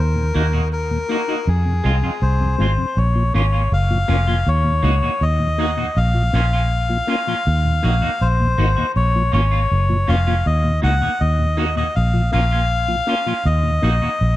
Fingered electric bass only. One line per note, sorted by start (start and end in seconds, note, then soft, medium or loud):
0.00 0.31 D#2 loud
0.36 1.02 D#2 medium
1.47 1.81 F2 medium
1.85 2.01 C2 medium
2.22 2.55 C2 medium
2.60 2.76 G#1 medium
2.97 3.30 A#1 loud
3.35 3.68 G#1 medium
3.72 4.05 F#1 loud
4.09 4.42 F1 loud
4.47 4.80 D#2 loud
4.83 5.00 C#2 loud
5.21 5.88 D#2 medium
5.97 6.30 A#1 loud
6.34 7.01 A#1 medium
7.47 7.80 D#2 medium
7.84 8.01 A#1 medium
8.21 8.54 A#1 medium
8.58 8.75 G#1 medium
8.96 9.29 A#1 medium
9.33 9.66 G#1 loud
9.72 10.04 F#1 medium
10.09 10.42 F1 loud
10.46 10.79 D#2 loud
10.84 11.00 C#2 medium
11.21 11.88 D#2 medium
11.97 12.29 A#1 loud
12.34 13.00 A#1 medium
13.46 13.78 D#2 loud
13.83 14.00 A#1 medium
14.21 14.37 A#1 medium